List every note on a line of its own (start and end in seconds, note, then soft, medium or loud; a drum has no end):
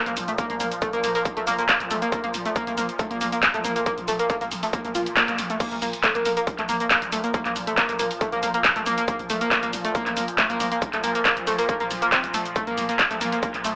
0.00 5.59 A#2 medium
0.00 5.59 F3 medium
0.06 0.16 A#1 medium
0.06 0.09 A#3 loud
0.06 closed hi-hat soft
0.06 shaker soft
0.17 0.28 A#1 loud
0.17 open hi-hat loud
0.17 shaker medium
0.28 0.30 A3 medium
0.28 closed hi-hat medium
0.28 shaker soft
0.38 0.45 A#3 medium
0.38 kick loud
0.38 closed hi-hat medium
0.38 shaker soft
0.50 0.60 A#1 medium
0.50 0.54 A#3 medium
0.50 closed hi-hat soft
0.60 0.71 A#1 loud
0.60 0.63 A#3 loud
0.60 open hi-hat loud
0.60 shaker medium
0.72 closed hi-hat soft
0.72 shaker soft
0.82 0.84 A3 medium
0.82 kick loud
0.82 closed hi-hat medium
0.82 shaker soft
0.93 1.03 A#1 medium
0.93 0.99 A#3 medium
0.93 closed hi-hat medium
0.93 shaker soft
1.04 1.15 A#1 loud
1.04 1.08 A#3 medium
1.04 open hi-hat loud
1.04 shaker medium
1.15 1.17 A#3 loud
1.15 open hi-hat medium
1.15 shaker soft
1.25 kick loud
1.25 closed hi-hat medium
1.25 shaker soft
1.37 1.47 A#1 medium
1.37 1.39 A3 medium
1.37 closed hi-hat medium
1.47 1.58 A#1 loud
1.47 1.53 A#3 medium
1.47 open hi-hat loud
1.47 shaker medium
1.58 1.62 A#3 medium
1.58 closed hi-hat medium
1.58 shaker soft
1.69 1.71 A#3 loud
1.69 kick loud
1.69 clap loud
1.69 closed hi-hat medium
1.69 shaker soft
1.80 1.90 A#1 medium
1.80 closed hi-hat soft
1.80 shaker soft
1.91 2.02 A#1 loud
1.91 1.93 A3 medium
1.91 open hi-hat loud
1.91 shaker medium
2.02 2.08 A#3 medium
2.02 closed hi-hat soft
2.02 shaker soft
2.12 2.16 A#3 medium
2.12 kick loud
2.12 closed hi-hat medium
2.12 shaker soft
2.24 2.33 A#1 medium
2.24 2.26 A#3 loud
2.24 closed hi-hat soft
2.34 2.45 A#1 loud
2.34 open hi-hat loud
2.34 shaker medium
2.45 2.48 A3 medium
2.45 closed hi-hat medium
2.45 shaker soft
2.56 2.62 A#3 medium
2.56 kick loud
2.56 closed hi-hat medium
2.56 shaker soft
2.67 2.77 A#1 medium
2.67 2.71 A#3 medium
2.67 closed hi-hat medium
2.67 shaker soft
2.77 2.89 A#1 loud
2.77 2.80 A#3 loud
2.77 open hi-hat loud
2.77 shaker medium
2.89 closed hi-hat medium
2.89 shaker soft
2.99 3.02 A3 medium
2.99 kick loud
2.99 closed hi-hat medium
2.99 shaker soft
3.11 3.20 A#1 medium
3.11 3.16 A#3 medium
3.11 closed hi-hat medium
3.21 3.32 A#1 loud
3.21 3.25 A#3 medium
3.21 open hi-hat loud
3.21 shaker medium
3.32 3.35 A#3 medium
3.32 closed hi-hat medium
3.32 shaker soft
3.43 kick loud
3.43 clap loud
3.43 closed hi-hat medium
3.43 shaker soft
3.54 3.64 A#1 medium
3.54 3.56 A3 medium
3.54 closed hi-hat medium
3.54 shaker soft
3.64 3.76 A#1 loud
3.64 3.71 A#3 medium
3.64 open hi-hat loud
3.64 shaker medium
3.76 3.80 A#3 medium
3.76 closed hi-hat medium
3.76 shaker soft
3.86 3.89 A#3 loud
3.86 kick loud
3.86 closed hi-hat medium
3.86 shaker soft
3.98 4.07 A#1 medium
3.98 closed hi-hat medium
4.08 4.19 A#1 loud
4.08 4.10 A3 medium
4.08 open hi-hat loud
4.08 shaker medium
4.19 4.25 A#3 medium
4.19 closed hi-hat medium
4.19 shaker soft
4.30 4.34 A#3 medium
4.30 kick loud
4.30 closed hi-hat medium
4.30 shaker soft
4.41 4.51 A#1 medium
4.41 4.43 A#3 loud
4.41 closed hi-hat medium
4.41 shaker soft
4.51 4.63 A#1 loud
4.51 open hi-hat loud
4.51 shaker medium
4.63 4.65 A3 medium
4.63 open hi-hat medium
4.63 shaker soft
4.73 4.79 A#3 medium
4.73 kick loud
4.73 closed hi-hat medium
4.73 swell medium
4.73 shaker soft
4.85 4.94 A#1 medium
4.85 4.88 A#3 medium
4.85 closed hi-hat medium
4.85 shaker soft
4.95 5.06 A#1 medium
4.95 4.97 F4 medium
4.95 open hi-hat loud
4.95 shaker medium
5.06 closed hi-hat medium
5.06 shaker soft
5.17 5.23 A#3 medium
5.17 kick loud
5.17 clap loud
5.17 closed hi-hat medium
5.17 shaker soft
5.28 5.38 A#1 medium
5.28 5.34 A#3 medium
5.28 closed hi-hat medium
5.28 shaker soft
5.38 5.50 A#1 loud
5.38 open hi-hat loud
5.38 shaker medium
5.50 5.54 A3 loud
5.50 closed hi-hat medium
5.50 shaker soft
5.60 13.75 A#2 medium
5.60 13.75 F3 medium
5.60 5.66 A#3 medium
5.60 kick loud
5.60 closed hi-hat medium
5.60 crash loud
5.60 shaker soft
5.72 5.81 A#1 medium
5.72 5.75 A#3 medium
5.72 closed hi-hat medium
5.82 5.93 A#1 loud
5.82 5.84 A#3 loud
5.82 open hi-hat loud
5.82 shaker medium
5.93 closed hi-hat medium
5.93 shaker soft
6.04 6.06 A3 medium
6.04 kick loud
6.04 clap loud
6.04 closed hi-hat medium
6.04 shaker soft
6.15 6.25 A#1 medium
6.15 6.21 A#3 medium
6.15 closed hi-hat medium
6.15 shaker soft
6.25 6.37 A#1 loud
6.25 6.30 A#3 medium
6.25 open hi-hat loud
6.25 shaker medium
6.37 6.39 A#3 loud
6.37 closed hi-hat medium
6.37 shaker soft
6.47 kick loud
6.47 closed hi-hat medium
6.47 shaker soft
6.59 6.68 A#1 medium
6.59 6.61 A3 medium
6.59 clap soft
6.59 closed hi-hat medium
6.69 6.80 A#1 medium
6.69 6.75 A#3 medium
6.69 open hi-hat loud
6.69 shaker medium
6.80 6.84 A#3 medium
6.80 closed hi-hat medium
6.80 shaker soft
6.91 6.93 A#3 loud
6.91 kick loud
6.91 clap loud
6.91 closed hi-hat medium
6.91 shaker soft
7.02 7.12 A#1 medium
7.02 closed hi-hat medium
7.02 shaker soft
7.12 7.24 A#1 loud
7.12 7.15 A3 medium
7.12 open hi-hat loud
7.12 shaker medium
7.24 7.29 A#3 medium
7.24 closed hi-hat medium
7.24 shaker soft
7.34 7.38 A#3 medium
7.34 kick loud
7.34 closed hi-hat medium
7.34 shaker soft
7.45 7.55 A#1 medium
7.45 7.48 A#3 loud
7.45 clap soft
7.45 closed hi-hat medium
7.56 7.67 A#1 loud
7.56 open hi-hat loud
7.56 shaker medium
7.67 7.69 A3 medium
7.67 closed hi-hat medium
7.67 shaker soft
7.78 7.84 A#3 medium
7.78 kick loud
7.78 clap loud
7.78 closed hi-hat medium
7.78 shaker soft
7.89 7.99 A#1 medium
7.89 7.93 A#3 medium
7.89 closed hi-hat medium
7.89 shaker soft
7.99 8.10 A#1 loud
7.99 8.02 A#3 loud
7.99 open hi-hat loud
7.99 shaker medium
8.11 open hi-hat medium
8.11 shaker soft
8.21 8.24 A3 medium
8.21 kick loud
8.21 closed hi-hat medium
8.21 shaker soft
8.32 8.42 A#1 medium
8.32 8.38 A#3 medium
8.32 closed hi-hat medium
8.43 8.54 A#1 medium
8.43 8.47 A#3 medium
8.43 open hi-hat loud
8.43 shaker medium
8.54 8.56 A#3 loud
8.54 closed hi-hat medium
8.54 shaker soft
8.64 kick loud
8.64 clap loud
8.64 closed hi-hat medium
8.64 shaker soft
8.76 8.86 A#1 medium
8.76 8.78 A3 medium
8.76 closed hi-hat medium
8.76 shaker soft
8.86 8.97 A#1 loud
8.86 8.92 A#3 medium
8.86 open hi-hat loud
8.86 shaker medium
8.98 9.01 A#3 medium
8.98 closed hi-hat medium
8.98 shaker soft
9.08 9.10 A#3 loud
9.08 kick loud
9.08 closed hi-hat medium
9.08 shaker soft
9.19 9.29 A#1 medium
9.19 closed hi-hat medium
9.30 9.41 A#1 loud
9.30 9.32 A3 medium
9.30 open hi-hat loud
9.30 shaker medium
9.41 9.47 A#3 medium
9.41 closed hi-hat medium
9.41 shaker soft
9.51 9.56 A#3 medium
9.51 kick loud
9.51 clap loud
9.51 closed hi-hat medium
9.51 shaker soft
9.63 9.73 A#1 medium
9.63 9.65 A#3 loud
9.63 closed hi-hat medium
9.63 shaker soft
9.73 9.84 A#1 medium
9.73 open hi-hat loud
9.73 shaker medium
9.85 9.87 A3 medium
9.85 closed hi-hat medium
9.85 shaker soft
9.95 10.01 A#3 medium
9.95 kick loud
9.95 closed hi-hat medium
9.95 shaker soft
10.06 10.16 A#1 medium
10.06 10.10 A#3 medium
10.06 clap soft
10.06 closed hi-hat medium
10.17 10.28 A#1 medium
10.17 10.19 A#3 loud
10.17 open hi-hat loud
10.17 shaker medium
10.28 closed hi-hat medium
10.28 shaker soft
10.38 10.41 A3 medium
10.38 kick loud
10.38 clap loud
10.38 closed hi-hat medium
10.38 shaker soft
10.50 10.60 A#1 medium
10.50 10.55 A#3 medium
10.50 closed hi-hat medium
10.50 shaker soft
10.60 10.71 A#1 loud
10.60 10.64 A#3 medium
10.60 open hi-hat loud
10.60 shaker medium
10.72 10.74 A#3 loud
10.72 closed hi-hat medium
10.72 shaker soft
10.82 kick loud
10.82 closed hi-hat medium
10.82 shaker soft
10.93 11.03 A#1 medium
10.93 10.96 A3 medium
10.93 clap soft
10.93 closed hi-hat medium
11.04 11.15 A#1 loud
11.04 11.10 A#3 medium
11.04 open hi-hat loud
11.04 shaker medium
11.15 11.19 A#3 medium
11.15 closed hi-hat soft
11.15 shaker soft
11.25 11.28 A#3 loud
11.25 kick loud
11.25 clap loud
11.25 closed hi-hat medium
11.25 shaker soft
11.37 11.47 A#1 medium
11.37 closed hi-hat medium
11.37 shaker soft
11.47 11.58 A#1 loud
11.47 11.50 A3 medium
11.47 open hi-hat loud
11.47 shaker medium
11.59 11.64 A#3 medium
11.59 open hi-hat medium
11.59 shaker soft
11.69 11.73 A#3 medium
11.69 kick loud
11.69 closed hi-hat medium
11.69 shaker soft
11.80 11.90 A#1 medium
11.80 11.83 A#3 loud
11.80 closed hi-hat medium
11.91 12.02 A#1 medium
11.91 open hi-hat loud
11.91 shaker medium
12.02 12.06 A#3 medium
12.02 closed hi-hat medium
12.02 shaker soft
12.12 12.17 C4 medium
12.12 kick loud
12.12 clap loud
12.12 closed hi-hat medium
12.12 shaker soft
12.24 12.33 A#1 medium
12.24 closed hi-hat medium
12.24 shaker soft
12.34 12.45 A#1 loud
12.34 12.37 A3 medium
12.34 open hi-hat loud
12.34 shaker medium
12.45 closed hi-hat medium
12.45 shaker soft
12.56 12.58 A3 medium
12.56 kick loud
12.56 closed hi-hat medium
12.56 shaker soft
12.67 12.77 A#1 medium
12.67 12.73 A#3 medium
12.67 closed hi-hat medium
12.78 12.89 A#1 loud
12.78 12.82 A#3 medium
12.78 open hi-hat loud
12.78 shaker medium
12.89 12.91 A#3 loud
12.89 closed hi-hat soft
12.89 shaker soft
12.99 kick loud
12.99 clap loud
12.99 closed hi-hat medium
12.99 shaker soft
13.11 13.20 A#1 medium
13.11 13.13 A3 medium
13.11 closed hi-hat medium
13.11 shaker soft
13.21 13.32 A#1 loud
13.21 13.27 A#3 medium
13.21 open hi-hat loud
13.21 shaker medium
13.32 13.36 A#3 medium
13.32 closed hi-hat soft
13.32 shaker soft
13.43 13.45 A#3 loud
13.43 kick loud
13.43 closed hi-hat medium
13.43 shaker soft
13.54 13.64 A#1 medium
13.54 clap soft
13.54 closed hi-hat soft
13.64 13.75 A#1 medium
13.64 13.67 A3 medium
13.64 open hi-hat loud
13.64 shaker medium